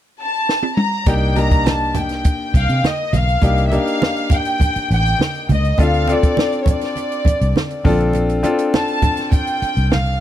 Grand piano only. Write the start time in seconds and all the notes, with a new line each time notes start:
1.06 A#3 D4 D#4 G4
1.36 A#3 D4 D#4 G4
3.42 A#3 D4 D#4 G4
3.72 A#3 D4 D#4 G4
5.78 C4 D4 F4 A4
6.08 C4 D4 F4 A4
7.84 C4 D4 F4 A4
8.43 C4 D4 F4 A4